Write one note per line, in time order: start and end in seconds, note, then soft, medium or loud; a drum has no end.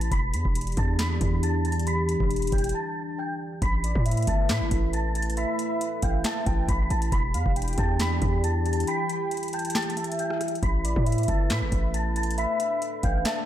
0.00 0.11 A1 loud
0.00 closed hi-hat medium
0.12 0.35 E1 loud
0.12 3.58 E3 medium
0.12 3.58 D4 medium
0.12 3.58 G4 medium
0.12 0.73 B5 loud
0.12 0.74 B6 medium
0.12 kick loud
0.12 closed hi-hat medium
0.33 0.44 E2 loud
0.33 closed hi-hat medium
0.45 0.76 E1 loud
0.45 kick medium
0.55 closed hi-hat medium
0.61 closed hi-hat medium
0.67 closed hi-hat medium
0.72 closed hi-hat soft
0.77 1.19 E2 loud
0.77 0.96 A5 medium
0.77 0.97 A6 medium
0.77 kick medium
0.77 closed hi-hat medium
0.99 1.40 B5 medium
0.99 1.41 B6 medium
0.99 snare loud
0.99 clap loud
0.99 closed hi-hat medium
1.21 2.16 E2 loud
1.21 kick medium
1.21 closed hi-hat medium
1.43 1.62 A5 medium
1.43 1.62 A6 medium
1.43 closed hi-hat medium
1.65 1.84 A5 medium
1.65 1.84 A6 medium
1.65 closed hi-hat medium
1.72 closed hi-hat medium
1.79 closed hi-hat medium
1.87 2.49 B5 loud
1.87 2.49 B6 medium
1.87 closed hi-hat medium
2.09 closed hi-hat medium
2.20 2.51 E1 loud
2.20 kick medium
2.31 closed hi-hat medium
2.36 closed hi-hat medium
2.42 closed hi-hat medium
2.47 closed hi-hat medium
2.52 2.73 E1 loud
2.52 2.71 G5 medium
2.52 2.72 G6 medium
2.52 kick medium
2.52 closed hi-hat medium
2.52 open hi-hat medium
2.58 closed hi-hat medium
2.64 closed hi-hat medium
2.69 closed hi-hat medium
2.74 3.15 A5 medium
2.74 3.16 A6 medium
3.18 3.37 G5 medium
3.18 3.38 G6 medium
3.62 3.94 A1 loud
3.62 7.09 A3 medium
3.62 7.09 E4 medium
3.62 7.09 B4 medium
3.62 4.24 B5 loud
3.62 4.24 B6 medium
3.62 kick loud
3.62 closed hi-hat medium
3.84 4.05 D5 medium
3.84 closed hi-hat medium
3.95 4.26 A2 loud
3.95 kick medium
4.06 4.89 E5 medium
4.06 closed hi-hat medium
4.11 closed hi-hat medium
4.17 closed hi-hat medium
4.22 closed hi-hat soft
4.27 4.51 G1 loud
4.27 4.46 A5 medium
4.27 4.47 A6 medium
4.27 kick medium
4.27 closed hi-hat medium
4.49 4.63 A2 loud
4.49 4.91 B5 medium
4.49 4.91 B6 medium
4.49 snare loud
4.49 clap loud
4.49 closed hi-hat medium
4.61 4.71 G1 loud
4.71 5.46 A1 loud
4.71 kick medium
4.71 closed hi-hat medium
4.93 5.12 A5 medium
4.93 5.13 A6 medium
4.93 closed hi-hat medium
5.15 5.34 A5 medium
5.15 5.35 A6 medium
5.15 closed hi-hat medium
5.22 closed hi-hat medium
5.30 closed hi-hat medium
5.37 5.99 E5 loud
5.37 5.99 B5 loud
5.37 5.99 B6 medium
5.37 closed hi-hat medium
5.59 closed hi-hat medium
5.81 closed hi-hat medium
6.02 6.24 A1 loud
6.02 6.24 F5 medium
6.02 6.22 G5 medium
6.02 6.22 G6 medium
6.02 kick medium
6.02 closed hi-hat medium
6.24 6.46 E5 medium
6.24 6.66 A5 medium
6.24 6.66 A6 medium
6.24 snare loud
6.24 clap loud
6.24 closed hi-hat medium
6.46 6.68 A1 loud
6.46 6.67 G5 medium
6.46 kick loud
6.46 closed hi-hat medium
6.68 6.90 A1 loud
6.68 6.87 B5 medium
6.68 6.88 B6 medium
6.68 kick loud
6.68 closed hi-hat medium
6.90 7.11 A1 loud
6.90 7.09 A5 medium
6.90 7.10 A6 medium
6.90 closed hi-hat medium
7.02 closed hi-hat medium
7.12 7.36 E1 loud
7.12 10.59 E3 medium
7.12 8.86 D4 medium
7.12 10.59 G4 medium
7.12 7.74 B5 loud
7.12 7.74 B6 medium
7.12 kick loud
7.12 closed hi-hat medium
7.34 7.45 E2 loud
7.34 7.55 F5 medium
7.34 closed hi-hat medium
7.46 7.77 E1 loud
7.46 kick medium
7.56 8.40 G5 medium
7.56 closed hi-hat medium
7.62 closed hi-hat medium
7.68 closed hi-hat medium
7.73 closed hi-hat soft
7.78 8.20 E2 loud
7.78 7.97 A5 medium
7.78 7.97 A6 medium
7.78 kick loud
7.78 closed hi-hat medium
7.99 8.41 B5 loud
7.99 8.42 B6 medium
7.99 snare loud
7.99 clap loud
7.99 closed hi-hat medium
8.22 8.85 E2 loud
8.22 kick loud
8.22 closed hi-hat medium
8.44 8.62 A5 medium
8.44 8.63 A6 medium
8.44 closed hi-hat medium
8.66 8.84 A5 medium
8.66 8.85 A6 medium
8.66 closed hi-hat medium
8.73 closed hi-hat medium
8.80 closed hi-hat medium
8.87 12.34 E4 medium
8.87 9.49 G5 loud
8.87 9.49 B5 loud
8.87 9.50 B6 medium
8.87 closed hi-hat medium
9.09 closed hi-hat medium
9.31 closed hi-hat medium
9.37 closed hi-hat medium
9.43 closed hi-hat medium
9.48 closed hi-hat medium
9.53 9.72 G5 medium
9.53 9.74 A5 medium
9.53 9.72 G6 medium
9.53 closed hi-hat medium
9.53 open hi-hat medium
9.59 closed hi-hat medium
9.65 closed hi-hat medium
9.70 closed hi-hat medium
9.75 9.96 G5 medium
9.75 10.16 A5 medium
9.75 10.17 A6 medium
9.75 snare loud
9.75 clap loud
9.82 closed hi-hat medium
9.90 closed hi-hat medium
9.97 10.59 E5 medium
9.97 closed hi-hat medium
10.04 closed hi-hat medium
10.12 closed hi-hat medium
10.19 10.38 G5 medium
10.19 10.38 G6 medium
10.19 closed hi-hat medium
10.30 cross-stick medium
10.41 cross-stick medium
10.41 closed hi-hat medium
10.48 closed hi-hat medium
10.55 closed hi-hat soft
10.63 10.95 A1 loud
10.63 13.46 A3 medium
10.63 13.46 B4 medium
10.63 11.24 B5 loud
10.63 11.25 B6 medium
10.63 kick loud
10.63 closed hi-hat medium
10.85 11.05 D5 medium
10.85 closed hi-hat medium
10.96 11.27 A2 loud
10.96 kick medium
11.06 11.90 E5 medium
11.06 closed hi-hat medium
11.12 closed hi-hat medium
11.18 closed hi-hat medium
11.23 closed hi-hat soft
11.28 11.52 G1 loud
11.28 11.47 A5 medium
11.28 11.48 A6 medium
11.28 kick medium
11.28 closed hi-hat medium
11.50 11.63 A2 loud
11.50 11.92 B5 medium
11.50 11.92 B6 medium
11.50 snare loud
11.50 clap loud
11.50 closed hi-hat medium
11.62 11.72 G1 loud
11.72 12.46 A1 loud
11.72 kick loud
11.72 closed hi-hat medium
11.94 12.13 A5 medium
11.94 12.13 A6 medium
11.94 closed hi-hat medium
12.16 12.35 A5 medium
12.16 12.35 A6 medium
12.16 closed hi-hat medium
12.23 closed hi-hat medium
12.31 closed hi-hat medium
12.38 13.46 D4 medium
12.38 13.00 E5 loud
12.38 13.00 B5 loud
12.38 13.00 B6 medium
12.38 closed hi-hat medium
12.60 closed hi-hat medium
12.82 closed hi-hat medium
13.03 13.25 A1 loud
13.03 13.24 F5 medium
13.03 13.22 G5 medium
13.03 13.23 G6 medium
13.03 kick medium
13.03 closed hi-hat medium
13.25 13.46 E5 medium
13.25 13.46 A5 medium
13.25 13.46 A6 medium
13.25 snare loud
13.25 clap loud
13.25 closed hi-hat medium